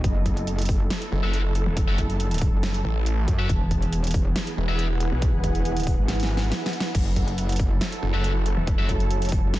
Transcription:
Already playing: B3 D#5
0.04 F#1 F#3 E4 A4, kick, closed hi-hat
0.26 kick, closed hi-hat
0.37 closed hi-hat
0.47 closed hi-hat
0.59 closed hi-hat
0.62 closed hi-hat
0.65 kick, closed hi-hat, open hi-hat
0.80 A5
0.90 snare, closed hi-hat
1.02 closed hi-hat
1.12 F#1
1.23 F#1 A3 F#4 E5
1.34 closed hi-hat
1.55 closed hi-hat
1.66 E1
1.77 kick, closed hi-hat
1.88 F#1 A3 F#4 E5
1.98 kick, closed hi-hat
2.10 closed hi-hat
2.20 closed hi-hat
2.31 closed hi-hat
2.34 closed hi-hat
2.38 kick, closed hi-hat, open hi-hat
2.53 F#1
2.63 snare, closed hi-hat
2.74 closed hi-hat
2.85 A1
3.06 closed hi-hat
3.28 F#2, kick, closed hi-hat
3.39 A3 F#4 E5
3.49 E1 E3 B3 E4 G#4, kick, closed hi-hat
3.59 B4
3.70 F#5, kick, closed hi-hat
3.82 closed hi-hat
3.93 closed hi-hat
4.04 closed hi-hat
4.07 closed hi-hat
4.11 kick, closed hi-hat, open hi-hat
4.34 G#5, snare, closed hi-hat
4.47 closed hi-hat
4.57 E1
4.68 E1 B3 G#4 E5
4.79 closed hi-hat
5.01 closed hi-hat
5.12 B1
5.22 kick, closed hi-hat
5.33 E1
5.44 kick, closed hi-hat
5.55 closed hi-hat
5.65 closed hi-hat
5.77 closed hi-hat
5.80 closed hi-hat
5.83 kick, closed hi-hat, open hi-hat
5.98 G#1
6.08 snare, closed hi-hat
6.20 snare, closed hi-hat
6.37 snare
6.52 snare, closed hi-hat
6.66 snare
6.73 closed hi-hat
6.80 snare
6.95 F#1 F#3 E4 F#4 A4, kick, closed hi-hat, crash
7.08 C#5 A5
7.16 kick, closed hi-hat
7.28 closed hi-hat
7.38 closed hi-hat
7.49 closed hi-hat
7.52 closed hi-hat
7.56 kick, closed hi-hat, open hi-hat
7.81 snare, closed hi-hat
7.92 closed hi-hat
8.03 F#1
8.14 F#1 A3 F#4 E5
8.24 closed hi-hat
8.46 closed hi-hat
8.57 E1
8.67 kick, closed hi-hat
8.79 F#1 A3 F#4 E5
8.89 kick, closed hi-hat
9.00 closed hi-hat
9.11 closed hi-hat
9.22 F1, closed hi-hat
9.25 closed hi-hat
9.29 kick, closed hi-hat, open hi-hat
9.43 F#1
9.54 snare, closed hi-hat

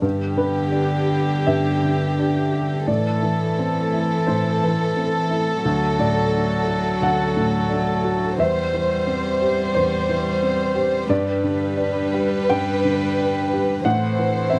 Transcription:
0.02 G2 D3 B3 D4 G4
0.37 D3 B4
0.72 D4
1.09 G4
1.47 G2 E5
1.84 D3
2.19 D4
2.53 G4
2.87 A2 E3 A3 E4 A4 D5
3.22 E3
3.59 C4
3.93 E4
4.27 A2 C5
4.63 E3
4.97 C4
5.30 E4
5.65 D2 F#3 F#4
5.99 A2 D5
6.33 D4
6.67 F#4
7.02 D2 F#5
7.37 A2
7.69 D4
8.04 F#4
8.38 E2 G3 G4 C5 E5
8.74 E3
9.07 C4
9.42 G4
9.75 E2 C5
10.09 E3
10.42 C4
10.75 G4
11.08 G2 G3 B4 D5
11.43 D3
11.77 D4
12.14 G4
12.50 G2 G5
12.84 D3
13.18 D4
13.53 G4
13.84 A2 E3 C4 E4 A4 C5 F#5
14.19 E3
14.50 C4 E5

